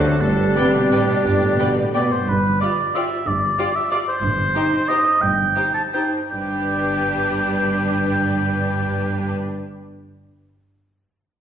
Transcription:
Already playing: D2 D3 F#3 A3 F#4 A4 C5 D5
0.21 G1 G2 G3 A3 D4 A4 B4 D5
0.56 C3 G3 B3 G4 B4 D5 G5
0.75 B2
0.91 A2 G3 B3 B4 D5 G5
1.10 B2
1.26 G1 G2
1.42 A2
1.59 B2 G3 B3 B4 D5 G5
1.77 A2
1.94 B2 G3 B3 B4 D5 G5
2.12 G2 C5
2.28 G1 G2 B4
2.61 F4 G4 D5
2.95 F4 G4 D5 E5
3.27 G1 G2 D5
3.58 F4 G4 D5
3.75 E5
3.91 F4 G4 D5
4.08 C5
4.23 G1 G2
4.55 D#4 G4 C5
4.88 D#4 G4 C5 D#5
5.21 G1 G2 G5
5.56 D#4 G4 C5
5.74 A5
5.93 D#4 G4 C5 G5
6.30 G1 G2 D4 G4 B4 G5

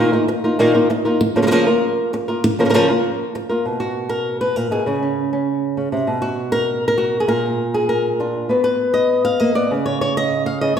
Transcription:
Already playing: A#2 D#3 A#3
0.00 D#4 F4 A#4
0.13 A#3 D#4 F4 A#4
0.28 muted nylon-string guitar stroke
0.44 A#3 D#4 F4 A#4
0.59 A#2 D#3 A#3 D#4 F4 A#4
0.74 A#3 D#4 F4 A#4
0.90 muted nylon-string guitar stroke
1.05 A#3 D#4 F4 A#4
1.21 muted nylon-string guitar stroke
1.36 C#3 F3 A#3 F4 A#4
1.42 F3 A#3 F4 A#4
1.47 F3 A#3 F4 A#4
1.51 C#3 F3 A#3 F4 A#4
1.67 A#3 F4 A#4
2.13 muted nylon-string guitar stroke
2.28 A#3 F4 A#4
2.44 muted nylon-string guitar stroke
2.59 C#3 F3 A#3 F4 A#4
2.65 F3 A#3 F4 A#4
2.69 F3 A#3 F4 A#4
2.74 C#3 F3 A#3 F4 A#4
2.89 A#3 F4 A#4
3.35 muted nylon-string guitar stroke
3.49 A#3 F4 A#4
3.65 B2
3.80 F#4
4.09 A#4
4.41 B4
4.56 A#2 A#4
4.71 B2 G#4
4.86 C#3 C#4
5.03 C#4
5.33 C#4
5.77 C#3
5.92 C3
6.07 B2
6.22 F#4
6.52 A#4
6.88 A#4
6.98 F#4
7.20 G#4
7.28 A#2 A#4
7.74 G#4
7.89 A#4
8.20 D4 F4
8.49 B3 F#4 B4
8.64 B4
8.94 D#5
9.25 F5
9.40 A#3 D#5
9.55 B3 D5
9.71 C#3
9.86 C#5
10.01 C#5
10.17 D#5
10.46 F5
10.61 C#3 D#5
10.77 C#5

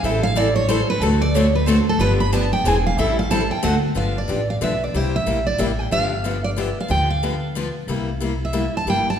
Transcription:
0.03 A1 E3 G3 C4 E4 A4 E5
0.23 F5
0.36 E3 G3 C4 E4 A4 D5
0.56 C#5
0.69 E3 G3 C4 E4 A4 C5
0.90 B4
1.01 D2 D3 A3 C4 F#4 A4
1.22 D5
1.35 D3 A3 C4 F#4 A4 C#5
1.55 B4
1.67 D3 A3 C4 F#4 A4 C5
1.89 A4
1.99 G1 D3 F3 B3 D4 G4 B4
2.20 B5
2.33 D3 F3 B3 D4 G4 A5
2.53 G5
2.64 E1 E3 C4 D4 G#4 C5 G#5
2.87 F5
2.97 A1 E3 G3 C4 E4 A4 E5
3.19 F5
3.31 E3 G3 C4 E4 A4 A5
3.51 G5
3.63 D2 D3 A3 C4 F#4 A4 F#5
3.95 G1 D3 F3 B3 D4 G4 F5
4.18 D5
4.28 A1 D3 F3 B3 D4 G4
4.50 F5
4.61 B1 D3 F3 B3 D4 G4 E5
4.84 D5
4.94 C2 C3 G3 A#3 E4 G4 C5
5.16 E5
5.26 A#1 C3 G3 A#3 E4 G4
5.47 D5
5.58 A1 C3 G3 A#3 E4 G4 E5
5.79 G5
5.91 G1 D3 F3 B3 D4 G4 F5
6.24 D3 F3 B3 D4 G4
6.44 D5
6.57 D3 F3 B3 D4 G4 E5
6.80 F5
6.88 D2 D3 F3 B3 D4 G4 G5
7.10 F5
7.23 D3 F3 B3 D4 G4
7.55 D3 F3 B3 D4 G4
7.87 C2 C3 G3 A#3 E4 G4
8.20 C3 G3 A#3 E4 G4
8.45 E5
8.53 C3 G3 A#3 E4 G4
8.77 A5
8.86 G1 C3 G3 A#3 E4 G4 G5
9.10 A5

